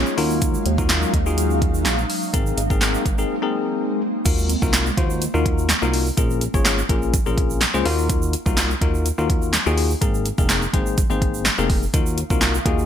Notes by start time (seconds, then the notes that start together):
Already playing: G#3 A#3 C#4 F4 G#4 C#5
0.06 shaker
0.17 D#2 F#3 D#4 F4 F#4 A#4 F5, open hi-hat, shaker
0.30 shaker
0.42 kick, closed hi-hat, shaker
0.54 shaker
0.66 D#2, closed hi-hat
0.78 D#4 F4 F#4 A#4, kick, shaker
0.89 snare, clap, closed hi-hat, shaker
1.02 shaker
1.14 D#2, kick, closed hi-hat
1.26 D#4 F4 F#4 G#4, shaker
1.38 closed hi-hat, shaker
1.50 shaker
1.62 kick, closed hi-hat
1.74 shaker
1.85 A#1, snare, clap, closed hi-hat, shaker
1.98 shaker
2.10 open hi-hat, shaker
2.22 shaker
2.33 G#1 G#3 A#3 C4 D#4 G#4 A#4, kick, closed hi-hat, shaker
2.46 shaker
2.58 G#1, closed hi-hat, shaker
2.70 C4 D#4 G#4 A#4, kick, shaker
2.81 snare, clap, closed hi-hat, shaker
2.94 shaker
3.06 G#1, kick, closed hi-hat, shaker
3.18 C4 D#4 G#4 A#4, shaker
3.42 C4 D#4 G#4 A#4
4.25 D#2 A#3 D#4 F4 F#4 A#4, kick, closed hi-hat, crash, shaker
4.38 shaker
4.49 closed hi-hat, shaker
4.62 C2 A#3 D#4 F4 F#4 A#4, kick, shaker
4.73 snare, clap, closed hi-hat, shaker
4.86 shaker
4.97 D#2 A#3 D#4 F4 F#4 C5, kick, closed hi-hat
5.10 shaker
5.22 closed hi-hat, shaker
5.34 D#2 A#3 D#4 F4 F#4 A#4, shaker
5.46 kick, closed hi-hat
5.58 shaker
5.69 snare, clap, closed hi-hat, shaker
5.82 C2 A#3 D#4 F4 F#4 A#4, shaker
5.94 open hi-hat
6.06 shaker
6.17 A#1 A#3 C#4 F4 G#4 A#4, kick, closed hi-hat, shaker
6.30 shaker
6.41 closed hi-hat, shaker
6.54 G#1 A#3 C#4 F4 G#4 C#5, kick, shaker
6.65 snare, clap, closed hi-hat, shaker
6.78 shaker
6.89 A#1 A#3 C#4 F4 G#4 A#4, kick, closed hi-hat
7.02 shaker
7.14 kick, closed hi-hat, shaker
7.26 A#1 A#3 C#4 F4 G#4 A#4, shaker
7.38 kick, closed hi-hat
7.50 shaker
7.61 snare, clap, closed hi-hat, shaker
7.74 C#2 A#3 C#4 F4 G#4 C5, shaker
7.85 D#2 A#3 D#4 F4 F#4 A#4, open hi-hat
7.98 shaker
8.09 kick, closed hi-hat, shaker
8.22 shaker
8.33 closed hi-hat, shaker
8.46 C2 A#3 D#4 F4 F#4 A#4, kick, shaker
8.57 snare, clap, closed hi-hat, shaker
8.70 shaker
8.81 D#2 A#3 D#4 F4 F#4 A#4, kick, closed hi-hat
8.94 shaker
9.06 closed hi-hat, shaker
9.18 D#2 A#3 D#4 F4 F#4 A#4, shaker
9.30 kick, closed hi-hat
9.42 shaker
9.53 snare, clap, closed hi-hat, shaker
9.66 D#2 A#3 D#4 F4 F#4 G#4, shaker
9.78 open hi-hat
9.90 shaker
10.01 G#1 A#3 C4 D#4 G#4 A#4, kick, closed hi-hat, shaker
10.14 shaker
10.26 closed hi-hat, shaker
10.38 F1 A#3 C4 D#4 G#4 A#4, kick, shaker
10.49 snare, clap, closed hi-hat, shaker
10.62 shaker
10.73 G#1 A#3 C4 D#4 G#4 C5, kick, closed hi-hat
10.86 shaker
10.98 kick, closed hi-hat, shaker
11.10 G#1 A#3 C4 D#4 G#4 C5, shaker
11.22 kick, closed hi-hat
11.34 shaker
11.45 snare, clap, closed hi-hat, shaker
11.58 F1 A#3 C4 D#4 G#4 A#4, shaker
11.70 kick, open hi-hat
11.82 shaker
11.93 D#2 D#3 A#3 D#4 F4 F#4 A#4 F5, kick, closed hi-hat, shaker
12.06 shaker
12.18 closed hi-hat, shaker
12.30 C2 A#3 D#4 F4 F#4 A#4, kick, shaker
12.41 snare, clap, closed hi-hat, shaker
12.54 shaker
12.65 D#2 A#3 D#4 F4 F#4 G#4, kick, closed hi-hat
12.78 shaker